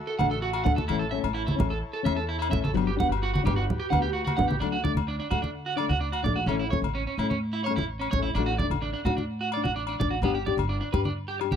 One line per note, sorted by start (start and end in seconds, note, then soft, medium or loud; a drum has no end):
0.00 0.85 F#4 medium
0.00 2.72 A4 medium
0.00 0.87 E5 medium
0.07 0.14 A4 medium
0.19 0.63 A1 medium
0.19 0.34 D4 medium
0.19 0.26 F#5 medium
0.19 high conga medium
0.19 low agogo medium
0.23 0.35 A3 soft
0.31 0.38 A4 medium
0.42 0.49 F#4 medium
0.53 0.61 F#4 medium
0.53 low agogo medium
0.64 0.88 D2 loud
0.64 0.79 D4 medium
0.64 0.72 F#5 medium
0.64 low conga medium
0.68 0.81 A3 medium
0.76 0.84 A4 medium
0.76 high conga medium
0.88 1.22 A1 medium
0.88 1.03 E3 medium
0.88 1.04 A3 medium
0.88 1.04 C#4 medium
0.88 0.95 E4 medium
0.88 2.73 E4 medium
0.88 2.74 C#5 medium
0.88 low agogo medium
0.99 1.07 A4 medium
1.11 1.26 C#4 medium
1.11 1.18 E5 medium
1.15 1.28 A3 medium
1.24 1.57 A1 medium
1.24 low agogo medium
1.34 1.42 E4 medium
1.47 1.54 E4 medium
1.47 high conga medium
1.56 1.81 A1 medium
1.56 1.73 A3 medium
1.56 1.71 C#4 medium
1.60 high conga medium
1.60 low conga medium
1.60 low agogo medium
1.70 1.77 A4 medium
1.93 2.01 A4 medium
2.03 2.49 E2 loud
2.03 2.20 A3 medium
2.03 2.18 C#4 medium
2.03 2.12 E5 medium
2.03 high conga medium
2.03 low agogo medium
2.16 2.24 A4 medium
2.29 2.36 E4 medium
2.39 2.47 E4 medium
2.39 low agogo medium
2.49 2.74 A1 medium
2.49 2.66 A3 medium
2.49 2.65 C#4 medium
2.49 2.59 E5 medium
2.53 low conga medium
2.64 2.71 A4 medium
2.64 high conga medium
2.74 3.08 G1 medium
2.74 2.89 F#3 medium
2.74 2.89 B3 medium
2.74 2.90 D4 medium
2.74 4.60 F#4 medium
2.74 4.61 G4 medium
2.74 4.60 B4 medium
2.74 muted clean electric guitar stroke medium
2.74 low agogo medium
2.87 2.94 G4 medium
2.97 3.14 B3 medium
2.97 3.12 D4 medium
2.97 3.07 F#5 medium
2.97 low conga medium
3.09 3.43 G1 medium
3.09 low agogo medium
3.23 3.30 F#4 medium
3.34 3.41 F#4 medium
3.34 high conga medium
3.43 3.67 G1 medium
3.43 3.60 B3 soft
3.43 3.58 D4 medium
3.43 3.53 G4 medium
3.43 high conga medium
3.43 low conga medium
3.43 low agogo medium
3.56 3.64 F#4 medium
3.70 low conga medium
3.80 3.87 G4 medium
3.90 4.36 D2 medium
3.90 4.07 B3 soft
3.90 4.05 D4 medium
3.90 3.98 F#5 medium
3.90 high conga medium
3.90 low agogo medium
4.02 4.10 G4 medium
4.13 4.21 F#4 medium
4.25 4.32 F#4 medium
4.25 high conga medium
4.25 low agogo medium
4.37 4.60 A1 medium
4.37 4.52 D4 medium
4.37 4.44 F#5 medium
4.37 low conga medium
4.42 4.54 B3 medium
4.48 4.56 G4 medium
4.48 high conga medium
4.60 4.94 D2 medium
4.60 4.76 F#3 medium
4.60 4.76 A3 medium
4.60 4.68 D4 medium
4.60 4.77 D4 medium
4.60 low agogo medium
4.72 4.80 F#4 medium
4.84 5.00 A3 soft
4.84 4.99 D4 medium
4.84 4.91 D5 medium
4.84 high conga medium
4.84 low conga medium
4.94 5.18 D2 medium
4.94 high conga medium
4.94 low agogo medium
5.08 5.16 D4 medium
5.20 5.27 D4 medium
5.31 5.87 D3 medium
5.31 5.47 A3 soft
5.31 5.38 F#4 medium
5.31 low conga medium
5.31 low agogo medium
5.42 5.50 D4 medium
5.42 high conga medium
5.66 5.74 F#4 medium
5.76 5.94 A3 soft
5.76 5.92 D4 medium
5.76 5.85 D5 medium
5.76 low agogo medium
5.89 6.23 D2 medium
5.89 5.97 F#4 medium
5.89 high conga medium
6.00 6.08 D4 medium
6.12 6.20 F#4 medium
6.12 low agogo medium
6.23 6.46 A#1 medium
6.23 6.40 A3 soft
6.23 6.39 D4 medium
6.23 6.32 D5 medium
6.23 low conga medium
6.36 6.43 F#4 medium
6.46 6.81 A1 loud
6.46 6.63 E3 medium
6.46 6.63 A3 medium
6.46 6.55 C#4 medium
6.46 low agogo medium
6.50 6.64 C#4 medium
6.59 6.67 E4 medium
6.70 6.86 C#4 medium
6.70 6.78 C#5 medium
6.70 high conga medium
6.70 low conga medium
6.75 6.88 A3 soft
6.82 7.05 A1 medium
6.82 high conga medium
6.82 low agogo medium
6.95 7.02 C#4 medium
7.07 7.14 C#4 medium
7.18 7.73 A2 medium
7.18 7.34 C#4 medium
7.18 7.26 E4 medium
7.18 low agogo medium
7.23 7.35 A3 soft
7.30 7.37 C#4 medium
7.30 high conga medium
7.53 7.61 E4 medium
7.64 7.81 C#4 medium
7.64 7.72 C#5 medium
7.64 low agogo medium
7.71 7.82 A3 soft
7.76 8.10 A1 medium
7.76 7.84 E4 medium
7.76 high conga medium
8.00 8.07 C#4 medium
8.00 low agogo medium
8.11 8.34 A1 medium
8.11 8.19 C#5 medium
8.11 low conga medium
8.16 8.30 A3 soft
8.16 8.28 C#4 medium
8.23 8.30 E4 medium
8.35 8.69 A1 loud
8.35 8.51 A3 medium
8.35 8.42 D4 medium
8.35 low agogo medium
8.39 8.52 D4 medium
8.39 8.52 F#4 medium
8.46 8.54 F#4 medium
8.58 8.66 D5 medium
8.58 muted nylon-string guitar stroke medium
8.58 high conga medium
8.58 low conga medium
8.63 8.76 D4 soft
8.70 8.93 A1 medium
8.70 high conga medium
8.70 low agogo medium
8.82 8.90 D4 medium
8.93 9.01 D4 medium
9.05 9.61 A2 medium
9.05 9.13 F#4 medium
9.05 9.21 F#4 medium
9.05 low conga medium
9.05 low agogo medium
9.09 9.22 D4 soft
9.17 9.24 D4 medium
9.17 high conga medium
9.41 9.48 F#4 medium
9.52 9.61 D5 medium
9.52 low agogo medium
9.57 9.69 D4 soft
9.64 9.98 A1 medium
9.64 9.71 F#4 medium
9.64 high conga medium
9.76 9.83 D4 medium
9.87 9.96 D4 medium
9.87 low agogo medium
10.00 10.21 A1 medium
10.00 10.15 D4 soft
10.00 10.07 D5 medium
10.00 muted nylon-string guitar stroke medium
10.00 low conga medium
10.10 10.18 F#4 medium
10.22 10.56 G1 medium
10.22 10.37 B3 medium
10.22 10.31 B3 medium
10.22 10.38 D4 medium
10.22 10.38 G4 medium
10.22 low conga medium
10.22 low agogo medium
10.35 10.42 G4 medium
10.46 10.62 G4 medium
10.46 10.54 D5 medium
10.46 low conga soft
10.51 10.63 D4 soft
10.57 10.80 G1 medium
10.57 high conga medium
10.57 low agogo medium
10.69 10.77 D4 medium
10.81 10.88 D4 medium
10.93 11.49 G2 medium
10.93 11.08 G4 medium
10.93 11.00 B4 medium
10.93 low conga medium
10.93 low agogo medium
10.97 11.10 D4 soft
11.05 11.13 D4 medium
11.05 high conga medium
11.28 11.36 G4 medium
11.40 11.55 G4 soft
11.40 muted clean electric guitar stroke medium
11.40 low agogo medium
11.44 11.56 D4 soft
11.51 11.56 G1 medium
11.51 11.56 G4 medium
11.51 high conga medium